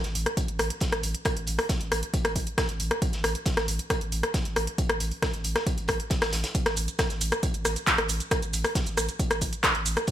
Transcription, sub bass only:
0.04 0.14 A1 medium
0.15 0.26 A1 loud
0.48 0.59 A1 medium
0.59 0.70 A1 loud
0.92 1.03 A1 medium
1.03 1.14 A1 loud
1.37 1.47 A1 medium
1.47 1.58 A1 loud
1.81 1.91 A1 medium
1.92 2.02 A1 loud
2.25 2.35 A1 medium
2.36 2.47 A1 loud
2.69 2.79 A1 medium
2.80 2.91 A1 loud
3.13 3.23 A1 medium
3.24 3.35 A1 loud
3.57 3.67 A1 medium
3.68 3.79 A1 loud
4.01 4.12 A1 medium
4.12 4.23 A1 loud
4.45 4.56 A1 medium
4.56 4.67 A1 medium
4.89 5.00 A1 medium
5.00 5.11 A1 medium
5.34 5.44 A1 medium
5.45 5.55 A1 medium
5.78 5.88 A1 medium
5.89 6.00 A1 medium
6.22 6.32 A1 medium
6.33 6.44 A1 medium
6.66 6.76 A1 medium
6.77 6.88 A1 loud
7.10 7.20 A1 medium
7.21 7.32 A1 loud
7.54 7.64 A1 medium
7.65 7.76 A1 loud
7.98 8.09 A1 medium
8.09 8.20 A1 loud
8.42 8.53 A1 medium
8.53 8.64 A1 loud
8.87 8.97 A1 medium
8.97 9.08 A1 loud
9.31 9.41 A1 medium
9.42 9.52 A1 loud
9.75 9.85 A1 medium
9.86 9.97 A1 loud

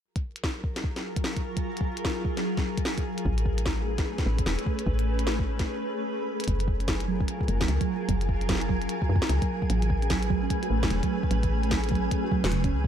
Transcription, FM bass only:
3.25 4.04 A1 medium
4.26 4.43 A1 medium
4.46 4.56 E1 medium
4.87 5.65 A1 loud
6.48 7.26 F#1 medium
7.48 7.66 F#1 medium
7.68 7.79 C#2 medium
8.09 8.87 F#1 medium
9.09 9.20 F#2 medium
9.29 9.40 C#2 loud
9.70 10.48 A1 loud
10.70 10.88 A1 medium
10.91 11.01 E1 medium
11.31 12.09 A1 medium
12.44 12.73 E1 medium
12.72 12.88 C#2 medium

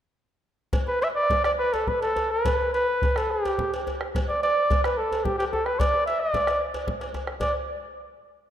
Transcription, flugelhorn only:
0.87 1.01 B4 medium
1.02 1.08 E5 medium
1.15 1.43 D5 medium
1.45 1.51 D5 medium
1.58 1.75 B4 medium
1.73 1.89 A4 medium
1.88 2.02 B4 medium
2.02 2.32 A4 medium
2.31 2.73 B4 medium
2.74 3.18 B4 medium
3.17 3.33 A4 medium
3.31 3.73 G4 medium
4.29 4.42 D5 medium
4.43 4.82 D5 medium
4.84 4.99 B4 medium
4.97 5.26 A4 medium
5.24 5.38 G4 medium
5.38 5.45 G4 medium
5.52 5.67 A4 medium
5.65 5.81 B4 medium
5.79 6.06 D5 medium
6.06 6.22 E5 medium
6.20 6.61 D5 medium
7.41 7.53 D5 medium

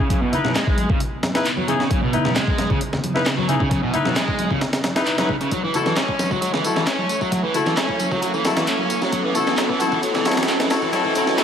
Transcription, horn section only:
0.32 0.51 D#4 medium
0.32 0.51 E4 medium
0.32 0.51 B4 loud
1.35 1.46 D#4 medium
1.35 1.46 E4 medium
1.35 1.46 B4 loud
1.68 1.80 D#4 medium
1.68 1.80 E4 medium
1.68 1.80 G#4 loud
2.12 2.32 D#4 medium
2.12 2.32 E4 medium
2.12 2.32 B4 medium
3.15 3.26 D#4 medium
3.15 3.26 E4 medium
3.15 3.26 B4 loud
3.48 3.61 D#4 medium
3.48 3.61 E4 medium
3.48 3.61 G#4 loud
3.93 4.12 D#4 medium
3.93 4.12 E4 medium
3.93 4.12 B4 loud
4.95 5.15 D#4 medium
4.95 5.15 E4 medium
4.95 5.15 B4 loud
5.18 5.29 D#4 medium
5.18 5.29 E4 medium
5.18 5.29 B4 medium
5.74 5.93 E4 medium
5.74 5.93 F#4 medium
5.74 5.93 A4 medium
6.64 6.83 E4 medium
6.64 6.83 F#4 medium
6.64 6.83 A4 medium
7.54 7.73 E4 medium
7.54 7.73 F#4 medium
7.54 7.73 A4 medium
8.44 8.64 E4 medium
8.44 8.63 F#4 medium
8.44 8.63 A4 medium
9.35 9.54 E4 medium
9.35 9.54 F#4 medium
9.35 9.54 A4 medium
9.80 9.99 E4 medium
9.80 9.99 F#4 medium
9.80 9.99 A4 loud
10.25 10.44 E4 medium
10.25 10.44 F#4 medium
10.25 10.44 A4 medium
10.70 10.89 E4 medium
10.70 10.89 F#4 medium
10.70 10.89 A4 loud
10.93 11.12 E4 medium
10.93 11.12 F#4 medium
10.93 11.12 A4 loud
11.15 11.34 E4 medium
11.15 11.34 F#4 medium
11.15 11.34 A4 loud
11.38 11.44 E4 medium
11.38 11.44 F#4 medium
11.38 11.44 A4 loud

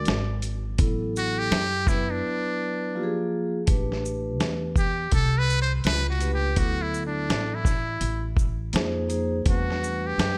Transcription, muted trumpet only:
0.00 0.44 D5 loud
1.17 1.40 F#4 loud
1.39 1.90 G4 loud
1.88 2.12 E4 medium
2.11 3.33 D4 medium
4.79 5.11 G4 medium
5.14 5.40 A4 loud
5.38 5.61 B4 loud
5.62 5.72 C5 loud
5.86 6.08 B4 loud
6.10 6.32 F#4 medium
6.34 6.60 G4 medium
6.58 6.84 F#4 loud
6.82 7.06 E4 medium
7.07 7.56 D4 medium
7.55 8.26 E4 medium
9.49 10.08 F#4 medium
10.07 10.38 G4 medium

